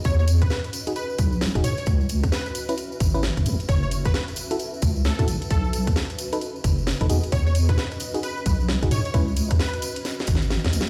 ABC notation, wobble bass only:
X:1
M:4/4
L:1/16
Q:"Swing 16ths" 1/4=132
K:E
V:1 name="Wobble bass" clef=bass
E,,3 G,, z6 B,,,3 E,,, G,, z | C,,3 E,, z6 G,,,3 G,,, E,, z | F,,,3 A,,, z6 C,,3 F,, A,,, z | B,,,3 D,, z6 F,,,3 F,,, E,, z |
E,,3 G,, z6 B,,,3 E,,, G,, z | C,,3 E,, z6 G,,,3 E,, C,, z |]